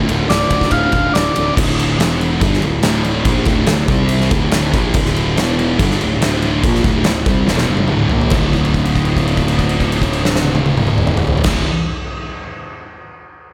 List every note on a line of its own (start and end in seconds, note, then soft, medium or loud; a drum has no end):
0.00 0.27 D2 loud
0.00 0.10 A2 medium
0.07 0.23 D1 medium
0.07 0.31 D3 medium
0.07 ride medium
0.11 0.29 A2 medium
0.28 0.44 D1 loud
0.28 1.13 D2 loud
0.28 0.95 A2 medium
0.28 0.71 D5 loud
0.28 snare medium
0.28 ride medium
0.32 0.92 D3 loud
0.50 0.65 D2 loud
0.50 kick medium
0.50 ride medium
0.61 kick medium
0.61 snare soft
0.71 0.86 D1 medium
0.71 1.13 F5 loud
0.71 kick medium
0.71 ride loud
0.92 1.07 D1 medium
0.92 1.18 D3 medium
0.92 kick medium
0.92 ride medium
0.96 1.16 A2 medium
1.14 1.29 D1 medium
1.14 1.56 D2 medium
1.14 1.38 A2 medium
1.14 1.55 D5 loud
1.14 snare loud
1.14 ride loud
1.19 1.34 D3 medium
1.35 1.51 D1 medium
1.35 1.57 A2 medium
1.35 1.55 D3 medium
1.35 ride medium
1.57 1.96 D1 loud
1.57 1.98 D2 loud
1.57 1.99 A2 loud
1.57 2.00 D3 loud
1.57 kick loud
1.57 crash loud
1.79 crash medium
1.99 2.38 E1 loud
1.99 2.40 E2 medium
1.99 2.41 B2 loud
1.99 2.41 E3 loud
1.99 snare loud
1.99 crash medium
2.21 crash medium
2.41 2.61 G1 loud
2.41 2.62 G2 loud
2.41 2.62 D3 loud
2.41 2.63 G3 loud
2.41 kick loud
2.41 crash medium
2.54 snare soft
2.62 2.82 D1 medium
2.62 2.80 D2 medium
2.62 2.80 A2 medium
2.62 crash medium
2.83 3.23 D1 medium
2.83 3.25 D2 loud
2.83 3.25 A2 loud
2.83 3.25 D3 loud
2.83 snare loud
2.83 crash medium
3.04 crash medium
3.25 3.45 A#1 loud
3.25 3.46 A#2 loud
3.25 3.47 F3 loud
3.25 3.47 A#3 medium
3.25 kick loud
3.25 crash medium
3.45 3.66 D1 medium
3.45 3.67 D2 medium
3.45 3.68 A2 medium
3.45 3.69 D3 loud
3.45 kick loud
3.45 crash medium
3.66 3.88 D1 medium
3.66 3.85 D2 medium
3.66 3.85 A2 medium
3.66 snare loud
3.66 crash medium
3.88 4.28 C2 loud
3.88 4.31 C3 medium
3.88 4.31 G3 loud
3.88 4.32 C4 loud
3.88 kick loud
3.88 crash medium
4.09 crash medium
4.20 snare soft
4.31 4.71 D1 loud
4.31 4.73 D2 loud
4.31 4.74 A2 loud
4.31 4.74 D3 loud
4.31 kick loud
4.31 crash medium
4.51 snare loud
4.51 crash medium
4.74 4.93 A#1 medium
4.74 4.94 A#2 medium
4.74 4.95 F3 loud
4.74 4.96 A#3 loud
4.74 kick loud
4.74 crash medium
4.94 5.34 D1 loud
4.94 5.37 D2 loud
4.94 5.38 A2 loud
4.94 5.38 D3 loud
4.94 kick loud
4.94 crash loud
5.05 snare soft
5.16 crash medium
5.37 5.77 E1 loud
5.37 5.79 E2 loud
5.37 5.79 B2 medium
5.37 5.80 E3 loud
5.37 snare loud
5.37 crash medium
5.59 crash medium
5.79 5.99 G1 medium
5.79 6.01 G2 loud
5.79 6.01 D3 loud
5.79 6.02 G3 loud
5.79 kick loud
5.79 crash medium
5.91 snare soft
6.01 6.22 D1 medium
6.01 6.18 D2 medium
6.01 6.19 A2 medium
6.01 crash medium
6.22 6.62 D1 medium
6.22 6.63 D2 loud
6.22 6.64 A2 loud
6.22 6.64 D3 loud
6.22 snare loud
6.22 crash medium
6.42 crash medium
6.63 6.84 A#1 loud
6.63 6.84 A#2 loud
6.63 6.84 F3 loud
6.63 6.85 A#3 loud
6.63 kick loud
6.63 crash medium
6.75 snare soft
6.84 7.04 D1 medium
6.84 7.05 D2 medium
6.84 7.05 A2 medium
6.84 7.06 D3 medium
6.84 kick loud
6.84 crash medium
7.04 7.26 D1 medium
7.04 7.23 D2 medium
7.04 7.23 A2 medium
7.04 snare loud
7.04 crash medium
7.26 7.46 C2 loud
7.26 7.47 C3 medium
7.26 7.49 G3 loud
7.26 7.49 C4 loud
7.26 kick loud
7.26 crash medium
7.48 7.68 E1 medium
7.48 7.68 E2 loud
7.48 7.69 B2 loud
7.48 7.70 E3 loud
7.48 snare medium
7.58 snare medium
7.68 7.89 G1 medium
7.68 7.90 G2 loud
7.68 7.91 D3 medium
7.68 7.91 G3 loud
7.77 high tom medium
7.88 8.10 D1 medium
7.88 8.11 D2 loud
7.88 8.11 A2 loud
7.88 mid tom medium
7.92 8.12 D3 loud
8.09 8.31 A#1 medium
8.09 8.31 A#2 medium
8.09 8.32 F3 medium
8.09 8.33 A#3 loud
8.09 floor tom loud
8.21 floor tom loud
8.30 11.35 D1 loud
8.30 11.43 D2 medium
8.30 11.45 A2 loud
8.30 kick loud
8.30 crash loud
8.36 11.47 D3 loud
8.53 kick medium
8.53 crash soft
8.65 crash soft
8.74 kick medium
8.74 crash soft
8.85 crash medium
8.96 kick medium
8.96 crash soft
9.05 crash soft
9.17 kick medium
9.17 crash medium
9.27 crash soft
9.37 kick medium
9.37 crash soft
9.48 crash medium
9.59 kick medium
9.59 crash medium
9.69 crash medium
9.80 kick medium
9.80 crash medium
9.92 crash medium
10.02 kick medium
10.02 crash medium
10.13 crash medium
10.25 snare loud
10.35 snare medium
10.45 high tom medium
10.55 high tom loud
10.66 high tom medium
10.77 mid tom loud
10.87 mid tom loud
10.98 mid tom medium
11.07 mid tom loud
11.17 mid tom loud
11.27 floor tom loud
11.37 floor tom loud
11.43 11.62 D1 loud
11.43 11.63 D2 loud
11.43 11.64 A2 loud
11.43 kick loud
11.43 snare loud
11.43 crash loud
11.48 11.65 D3 loud